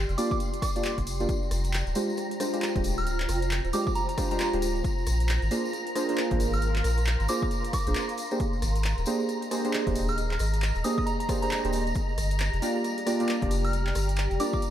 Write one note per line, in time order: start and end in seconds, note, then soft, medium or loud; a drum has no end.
0.00 1.93 G4 medium
0.00 2.73 D5 medium
0.00 6.00 G5 medium
0.00 1.30 C6 medium
0.09 0.16 F1 loud
0.09 closed hi-hat soft
0.09 tambourine soft
0.18 0.34 A#3 medium
0.18 0.34 D4 medium
0.18 0.34 F4 medium
0.18 0.34 G4 medium
0.18 0.34 D5 loud
0.18 0.26 D6 medium
0.18 open hi-hat loud
0.18 tambourine medium
0.31 0.37 D6 medium
0.31 kick loud
0.31 tambourine soft
0.40 closed hi-hat medium
0.40 tambourine soft
0.53 closed hi-hat medium
0.53 tambourine soft
0.62 0.98 D6 medium
0.62 kick loud
0.62 cross-stick medium
0.62 open hi-hat loud
0.62 tambourine medium
0.76 0.83 A#3 medium
0.76 0.83 D4 medium
0.76 0.83 F4 medium
0.76 0.83 G4 medium
0.76 0.83 D5 medium
0.76 closed hi-hat medium
0.76 tambourine soft
0.84 clap loud
0.84 tambourine medium
0.98 1.26 F1 loud
0.98 kick medium
0.98 closed hi-hat medium
0.98 tambourine soft
1.07 open hi-hat loud
1.07 tambourine medium
1.20 1.27 A#3 medium
1.20 1.27 D4 medium
1.20 1.27 F4 medium
1.20 1.27 G4 medium
1.20 1.27 D5 loud
1.20 closed hi-hat soft
1.20 tambourine soft
1.29 6.18 F4 medium
1.29 14.70 A#5 medium
1.29 kick loud
1.29 closed hi-hat medium
1.29 tambourine medium
1.43 tambourine soft
1.50 1.83 F1 loud
1.50 6.18 C5 medium
1.50 cross-stick medium
1.50 open hi-hat loud
1.50 tambourine medium
1.64 closed hi-hat medium
1.64 tambourine soft
1.73 clap loud
1.73 tambourine medium
1.87 1.94 D1 loud
1.87 closed hi-hat soft
1.87 tambourine soft
1.95 2.12 G#3 medium
1.95 2.12 D4 medium
1.95 2.12 F4 medium
1.95 2.12 G4 medium
1.95 2.12 C5 loud
1.95 open hi-hat loud
1.95 tambourine loud
2.10 tambourine soft
2.17 cross-stick soft
2.17 closed hi-hat medium
2.17 tambourine medium
2.31 closed hi-hat medium
2.31 tambourine soft
2.40 2.51 G#3 medium
2.40 2.51 D4 medium
2.40 2.51 F4 medium
2.40 2.51 G4 medium
2.40 2.51 C5 medium
2.40 cross-stick medium
2.40 open hi-hat loud
2.40 tambourine loud
2.53 2.72 G#3 medium
2.53 2.72 D4 medium
2.53 2.72 F4 medium
2.53 2.72 G4 medium
2.53 2.72 C5 loud
2.53 closed hi-hat medium
2.53 tambourine soft
2.62 clap loud
2.62 tambourine medium
2.76 3.26 D1 loud
2.76 2.89 G#3 medium
2.76 2.89 D4 medium
2.76 2.89 F4 medium
2.76 2.89 G4 medium
2.76 2.89 C5 medium
2.76 kick loud
2.76 closed hi-hat medium
2.84 open hi-hat loud
2.84 tambourine loud
2.98 3.17 F6 medium
2.98 closed hi-hat soft
2.98 tambourine soft
3.07 closed hi-hat medium
3.07 tambourine medium
3.19 clap medium
3.19 tambourine soft
3.29 3.61 F1 loud
3.29 cross-stick medium
3.29 open hi-hat loud
3.29 tambourine medium
3.42 closed hi-hat medium
3.42 tambourine soft
3.51 clap loud
3.51 tambourine medium
3.65 3.72 D1 loud
3.65 closed hi-hat soft
3.65 tambourine soft
3.73 3.90 G#3 medium
3.73 3.90 D4 medium
3.73 3.90 F4 medium
3.73 3.90 G4 medium
3.73 3.90 C5 loud
3.73 3.82 D6 medium
3.73 open hi-hat loud
3.73 tambourine loud
3.87 3.92 D6 medium
3.87 kick loud
3.87 tambourine soft
3.95 4.04 A#5 medium
3.95 closed hi-hat medium
3.95 tambourine medium
4.09 4.14 A#5 medium
4.09 closed hi-hat medium
4.09 tambourine soft
4.18 4.29 G#3 medium
4.18 4.29 D4 medium
4.18 4.29 F4 medium
4.18 4.29 G4 medium
4.18 4.29 C5 medium
4.18 kick loud
4.18 cross-stick medium
4.18 open hi-hat loud
4.18 tambourine loud
4.31 4.50 G#3 medium
4.31 4.50 D4 medium
4.31 4.50 F4 medium
4.31 4.50 G4 medium
4.31 4.50 C5 loud
4.31 4.37 A#5 medium
4.31 closed hi-hat medium
4.31 tambourine soft
4.39 4.49 A#5 medium
4.39 clap loud
4.39 tambourine medium
4.53 4.82 D1 loud
4.53 4.66 G#3 medium
4.53 4.66 D4 medium
4.53 4.66 F4 medium
4.53 4.66 G4 medium
4.53 4.66 C5 medium
4.53 closed hi-hat medium
4.53 tambourine soft
4.62 open hi-hat loud
4.62 tambourine loud
4.76 closed hi-hat soft
4.76 tambourine soft
4.84 8.84 A#4 medium
4.84 kick loud
4.84 closed hi-hat medium
4.84 tambourine medium
4.98 tambourine soft
5.06 5.39 A#1 loud
5.06 cross-stick medium
5.06 open hi-hat loud
5.06 tambourine loud
5.20 closed hi-hat medium
5.20 tambourine soft
5.25 9.03 F5 medium
5.29 clap loud
5.29 tambourine medium
5.42 5.49 G#1 loud
5.42 closed hi-hat soft
5.42 tambourine soft
5.47 5.67 D4 medium
5.47 5.67 F4 medium
5.47 5.67 G#4 medium
5.47 9.55 C6 medium
5.47 open hi-hat loud
5.51 5.67 A#3 medium
5.51 5.67 C5 loud
5.51 tambourine loud
5.65 tambourine soft
5.73 cross-stick soft
5.73 closed hi-hat medium
5.73 tambourine medium
5.87 closed hi-hat medium
5.87 tambourine soft
5.95 6.07 A#3 medium
5.95 6.07 D4 medium
5.95 6.07 F4 medium
5.95 6.07 G#4 medium
5.95 6.07 C5 medium
5.95 cross-stick medium
5.95 open hi-hat loud
5.95 tambourine loud
6.09 6.28 A#3 medium
6.09 6.28 D4 medium
6.09 6.28 F4 medium
6.09 6.28 G#4 medium
6.09 6.28 C5 loud
6.09 closed hi-hat medium
6.09 tambourine soft
6.18 clap loud
6.18 tambourine medium
6.31 6.82 G#1 loud
6.31 6.44 A#3 medium
6.31 6.44 D4 medium
6.31 6.44 F4 medium
6.31 6.44 G#4 medium
6.31 6.44 C5 medium
6.31 kick loud
6.31 closed hi-hat medium
6.31 tambourine soft
6.40 open hi-hat loud
6.40 tambourine loud
6.53 6.73 F6 medium
6.53 closed hi-hat soft
6.53 tambourine soft
6.62 closed hi-hat medium
6.62 tambourine medium
6.76 clap medium
6.76 tambourine soft
6.84 7.16 A#1 loud
6.84 cross-stick medium
6.84 open hi-hat loud
6.84 tambourine medium
6.98 closed hi-hat medium
6.98 tambourine soft
7.06 clap loud
7.06 tambourine soft
7.20 7.27 G#1 loud
7.20 closed hi-hat soft
7.20 tambourine soft
7.28 7.45 A#3 medium
7.28 7.45 D4 medium
7.28 7.45 F4 medium
7.28 7.45 G#4 medium
7.28 7.45 C5 loud
7.28 7.37 D6 medium
7.28 open hi-hat loud
7.28 tambourine loud
7.42 7.48 D6 medium
7.42 kick loud
7.42 tambourine soft
7.51 closed hi-hat medium
7.51 tambourine medium
7.64 closed hi-hat medium
7.64 tambourine soft
7.73 8.09 D6 medium
7.73 kick loud
7.73 cross-stick medium
7.73 open hi-hat loud
7.73 tambourine loud
7.87 7.94 A#1 medium
7.87 7.94 A#3 medium
7.87 7.94 D4 medium
7.87 7.94 F4 medium
7.87 7.94 G#4 medium
7.87 7.94 C5 medium
7.87 closed hi-hat medium
7.87 tambourine soft
7.95 clap loud
7.95 tambourine medium
8.09 closed hi-hat medium
8.09 tambourine soft
8.18 11.95 G#4 medium
8.18 open hi-hat loud
8.18 tambourine medium
8.31 8.38 A#3 medium
8.31 8.38 D4 medium
8.31 8.38 G4 medium
8.31 8.38 G#4 medium
8.31 8.38 C5 loud
8.31 cross-stick soft
8.31 closed hi-hat soft
8.31 tambourine soft
8.40 kick loud
8.40 closed hi-hat medium
8.40 tambourine soft
8.53 11.96 D#5 medium
8.53 13.05 A#5 medium
8.53 tambourine soft
8.62 8.94 G#1 loud
8.62 cross-stick medium
8.62 open hi-hat loud
8.62 tambourine medium
8.76 closed hi-hat medium
8.76 tambourine soft
8.84 clap loud
8.84 tambourine soft
8.98 9.05 D#1 loud
8.98 closed hi-hat soft
8.98 tambourine soft
9.06 9.23 A#3 medium
9.06 9.23 D4 medium
9.06 9.23 G4 medium
9.06 9.23 G#4 medium
9.06 9.23 C5 loud
9.06 open hi-hat loud
9.06 tambourine loud
9.20 tambourine soft
9.29 cross-stick soft
9.29 closed hi-hat medium
9.29 tambourine medium
9.42 closed hi-hat medium
9.42 tambourine soft
9.51 9.62 A#3 medium
9.51 9.62 D4 medium
9.51 9.62 G4 medium
9.51 9.62 G#4 medium
9.51 9.62 C5 medium
9.51 cross-stick medium
9.51 open hi-hat loud
9.51 tambourine loud
9.65 9.84 A#3 medium
9.65 9.84 D4 medium
9.65 9.84 G4 medium
9.65 9.84 G#4 medium
9.65 9.84 C5 loud
9.65 closed hi-hat medium
9.65 tambourine soft
9.73 clap loud
9.73 tambourine medium
9.87 10.37 D#1 loud
9.87 10.00 A#3 medium
9.87 10.00 D4 medium
9.87 10.00 G4 medium
9.87 10.00 G#4 medium
9.87 10.00 C5 medium
9.87 kick loud
9.87 closed hi-hat medium
9.87 tambourine soft
9.95 open hi-hat loud
9.95 tambourine medium
10.08 10.28 F6 medium
10.08 closed hi-hat soft
10.08 tambourine soft
10.18 closed hi-hat medium
10.18 tambourine medium
10.31 clap medium
10.31 tambourine soft
10.39 10.72 G#1 loud
10.39 cross-stick medium
10.39 open hi-hat loud
10.39 tambourine medium
10.54 closed hi-hat medium
10.54 tambourine soft
10.62 clap loud
10.62 tambourine medium
10.75 10.83 D#1 loud
10.75 closed hi-hat soft
10.75 tambourine soft
10.84 11.01 A#3 medium
10.84 11.01 D4 medium
10.84 11.01 G4 medium
10.84 11.01 G#4 medium
10.84 11.01 C5 medium
10.84 10.93 D#6 medium
10.84 open hi-hat loud
10.84 tambourine medium
10.98 11.03 D#6 medium
10.98 kick loud
10.98 tambourine soft
11.06 11.15 A#5 medium
11.06 closed hi-hat medium
11.06 tambourine medium
11.20 11.26 A#5 medium
11.20 closed hi-hat medium
11.20 tambourine soft
11.29 11.40 A#3 medium
11.29 11.40 D4 medium
11.29 11.40 G4 medium
11.29 11.40 G#4 medium
11.29 11.40 C5 medium
11.29 kick loud
11.29 cross-stick medium
11.29 open hi-hat loud
11.29 tambourine medium
11.42 11.61 A#3 medium
11.42 11.61 D4 medium
11.42 11.61 G4 medium
11.42 11.61 G#4 medium
11.42 11.61 C5 medium
11.42 11.48 A#5 medium
11.42 closed hi-hat medium
11.42 tambourine soft
11.51 11.60 A#5 medium
11.51 clap loud
11.51 tambourine soft
11.64 11.93 D#1 loud
11.64 11.78 A#3 medium
11.64 11.78 D4 medium
11.64 11.78 G4 medium
11.64 11.78 G#4 medium
11.64 11.78 C5 medium
11.64 closed hi-hat medium
11.64 tambourine soft
11.73 open hi-hat loud
11.73 tambourine medium
11.87 closed hi-hat soft
11.87 tambourine soft
11.95 14.70 G4 medium
11.95 kick loud
11.95 closed hi-hat medium
11.95 tambourine soft
12.09 tambourine soft
12.17 12.49 G1 loud
12.17 cross-stick medium
12.17 open hi-hat loud
12.17 tambourine medium
12.27 14.70 D5 medium
12.27 tambourine soft
12.31 closed hi-hat medium
12.39 14.70 G5 medium
12.39 clap loud
12.39 tambourine medium
12.53 12.60 F1 loud
12.53 closed hi-hat soft
12.53 tambourine soft
12.62 12.78 A#3 medium
12.62 12.78 D4 medium
12.62 12.78 F4 medium
12.62 12.78 G4 medium
12.62 12.78 D5 loud
12.62 open hi-hat loud
12.62 tambourine loud
12.75 tambourine soft
12.84 cross-stick soft
12.84 closed hi-hat medium
12.84 tambourine soft
12.98 closed hi-hat medium
12.98 tambourine soft
13.06 13.18 A#3 medium
13.06 13.18 D4 medium
13.06 13.18 F4 medium
13.06 13.18 G4 medium
13.06 13.18 D5 medium
13.06 cross-stick medium
13.06 open hi-hat loud
13.06 tambourine medium
13.20 13.39 A#3 medium
13.20 13.39 D4 medium
13.20 13.39 F4 medium
13.20 13.39 G4 medium
13.20 13.39 D5 loud
13.20 closed hi-hat medium
13.20 tambourine soft
13.28 clap loud
13.28 tambourine medium
13.41 13.93 F1 loud
13.41 13.55 A#3 medium
13.41 13.55 D4 medium
13.41 13.55 F4 medium
13.41 13.55 G4 medium
13.41 13.55 D5 medium
13.41 kick loud
13.41 closed hi-hat medium
13.41 tambourine soft
13.51 open hi-hat loud
13.51 tambourine medium
13.65 13.84 F6 medium
13.65 closed hi-hat soft
13.65 tambourine soft
13.73 closed hi-hat medium
13.73 tambourine soft
13.87 clap medium
13.87 tambourine soft
13.95 14.27 G1 loud
13.95 cross-stick medium
13.95 open hi-hat loud
13.95 tambourine medium
14.09 closed hi-hat medium
14.09 tambourine soft
14.16 clap loud
14.16 tambourine medium
14.31 14.38 F1 loud
14.31 closed hi-hat soft
14.31 tambourine soft
14.40 14.56 A#3 medium
14.40 14.56 D4 medium
14.40 14.56 F4 medium
14.40 14.56 G4 medium
14.40 14.56 D5 loud
14.40 14.49 D6 loud
14.40 open hi-hat loud
14.40 tambourine medium
14.53 14.59 D6 medium
14.53 kick loud
14.53 tambourine soft
14.62 closed hi-hat medium
14.62 tambourine soft